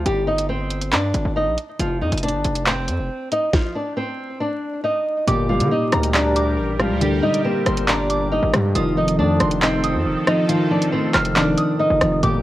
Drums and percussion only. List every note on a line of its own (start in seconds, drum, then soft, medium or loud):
0.06 closed hi-hat medium
0.38 closed hi-hat medium
0.71 closed hi-hat medium
0.81 closed hi-hat medium
0.93 clap loud
0.93 closed hi-hat medium
1.14 closed hi-hat medium
1.58 closed hi-hat medium
1.80 closed hi-hat loud
2.12 closed hi-hat medium
2.17 closed hi-hat medium
2.23 closed hi-hat medium
2.28 closed hi-hat medium
2.44 closed hi-hat medium
2.55 closed hi-hat medium
2.66 clap loud
2.88 closed hi-hat medium
3.32 closed hi-hat medium
3.53 kick loud
3.53 snare medium
5.27 closed hi-hat loud
5.60 closed hi-hat medium
5.92 cross-stick loud
5.92 closed hi-hat medium
6.03 closed hi-hat medium
6.14 clap loud
6.36 closed hi-hat medium
6.80 cross-stick loud
6.80 closed hi-hat medium
7.01 closed hi-hat medium
7.34 closed hi-hat medium
7.66 cross-stick medium
7.66 closed hi-hat medium
7.77 closed hi-hat medium
7.88 clap loud
7.88 closed hi-hat medium
8.10 closed hi-hat medium
8.53 cross-stick loud
8.53 closed hi-hat medium
8.75 closed hi-hat loud
9.08 closed hi-hat medium
9.40 cross-stick medium
9.40 closed hi-hat medium
9.51 closed hi-hat medium
9.62 clap loud
9.84 closed hi-hat medium
10.27 cross-stick loud
10.27 closed hi-hat medium
10.49 closed hi-hat loud
10.82 closed hi-hat medium
11.14 cross-stick medium
11.14 clap medium
11.14 closed hi-hat medium
11.25 closed hi-hat medium
11.36 clap loud
11.36 closed hi-hat medium
11.58 closed hi-hat medium
12.01 cross-stick loud
12.01 closed hi-hat medium
12.23 closed hi-hat loud